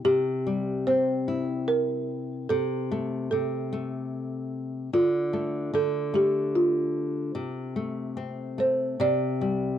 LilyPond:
<<
  \new Staff \with { instrumentName = "Marimba" } { \time 3/4 \key c \mixolydian \tempo 4 = 74 g'4 c''4 bes'4 | a'4 a'4. r8 | f'4 a'8 g'8 f'4~ | f'4. c''8 d''4 | }
  \new Staff \with { instrumentName = "Nylon-string guitar" } { \time 3/4 \key c \mixolydian <c e'>8 g8 c'8 e'4. | c8 a8 c8 a4. | d8 a8 d8 a4. | c8 a8 c'8 a8 c8 g8 | }
>>